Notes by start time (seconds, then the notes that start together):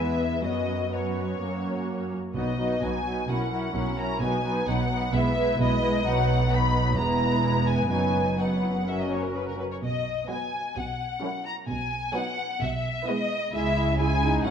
Already playing: E2 G#3 B3 E4 B4 E5
0.43 F#2 F#3 B3 C#4 F#4 D#5
0.92 F#3 B3 C#4 F#4 C#5
1.41 F#2 F#3 A#3 C#4 F#4
2.35 B1 B2 F#3 B3 D#4 F#4 D#5
2.59 F#3 B3 D#4 F#4
2.81 B1 B2 F#3 B3 D#4 F#4 G#5
3.05 F#3 B3 D#4 F#4
3.28 B1 B2 F#3 C#4 E4 A#4 F#5
3.53 F#3 C#4 E4 A#4
3.74 B1 B2 F#3 C#4 E4 A#4
3.98 F#3 C#4 E4 A#4 A#5
4.21 B1 B2 F#3 B3 D#4 B4 G#5
4.45 F#3 B3 D#4 B4
4.67 B1 B2 F#3 B3 D#4 B4 F#5
4.91 F#3 B3 D#4 B4
5.13 B1 B2 G#3 B3 E4 B4 E5
5.35 G#3 B3 E4 B4
5.59 B1 B2 G#3 B3 E4 B4 D#5
5.81 G#3 B3 E4 B4
6.03 B1 B2 F#3 B3 D#4 B4 F#5
6.50 F#3 B3 D#4 B4 B5
6.96 E1 E2 G#3 B3 E4 B4 A#5
7.67 G#5
7.90 F#1 F#2 F#3 B3 D#4 B4 G#5
8.38 F#3 B3 D#4 B4 F#5
8.63 E4
8.87 F#3 C#4 F#4 A#4 E5
8.99 D#5
9.11 C#5
9.23 A#4
9.35 B4
9.48 A#4
9.59 B4
9.71 C#5
9.81 B1 B2 D#5
10.29 F#3 B3 F#4 B4 G#5
10.76 B1 B2 F#5
11.22 F#3 C#4 E4 A#4
11.45 A#5
11.68 B1 B2 G#5
12.14 F#3 B3 D#4 B4 F#5
12.61 B1 B2 E5
13.07 G#3 B3 E4 B4 D#5
13.53 C#2 C#3 G#3 E4 G#4 E5
13.99 G#3 E4 G#4 G#5
14.23 D#4
14.44 A1 A2 F#3 C#4 E4 A4 F#5